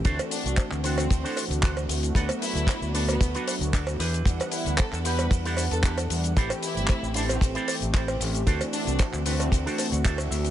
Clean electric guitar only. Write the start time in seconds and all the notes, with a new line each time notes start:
0.04 D4 F#4 A4 C5
0.31 muted clean electric guitar stroke
0.45 muted clean electric guitar stroke
0.72 muted clean electric guitar stroke
0.84 D4 F#4 A4 C5
1.24 D4 F#4 A4 C5
1.62 D4 F#4 A4 C5
1.89 muted clean electric guitar stroke
2.15 D4 F#4 A4 B4
2.42 muted clean electric guitar stroke
2.56 muted clean electric guitar stroke
2.82 muted clean electric guitar stroke
2.94 D4 F#4 A4 B4
3.35 D4 F#4 A4 B4
3.73 D4 F#4 A4 D5
3.99 D4 E4 G4 B4
4.52 muted clean electric guitar stroke
4.66 muted clean electric guitar stroke
4.92 muted clean electric guitar stroke
5.05 D4 E4 G4 B4
5.45 D4 E4 G4 A4
5.83 D4 E4 G4 B4
6.10 muted clean electric guitar stroke
6.36 E4 G4 A4 C5
6.63 muted clean electric guitar stroke
6.77 muted clean electric guitar stroke
7.03 muted clean electric guitar stroke
7.15 E4 G4 A4 C5
7.55 E4 G4 A4 C5
7.94 E4 G4 A4 C5
8.21 muted clean electric guitar stroke
8.46 D4 F#4 A4 C5
8.73 muted clean electric guitar stroke
8.87 muted clean electric guitar stroke
9.13 muted clean electric guitar stroke
9.25 D4 F#4 A4 B4
9.66 D4 F#4 A4 C5
9.78 A5
9.92 F#5
10.04 D4 F#4 A4 C5 E5
10.31 E5, muted clean electric guitar stroke